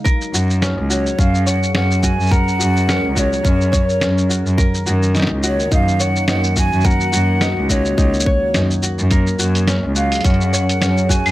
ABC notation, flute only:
X:1
M:4/4
L:1/8
Q:"Swing 16ths" 1/4=106
K:F#
V:1 name="Flute"
z3 c e f f g | f3 c4 z | z3 c e f f g | f3 c4 z |
z3 e f3 g |]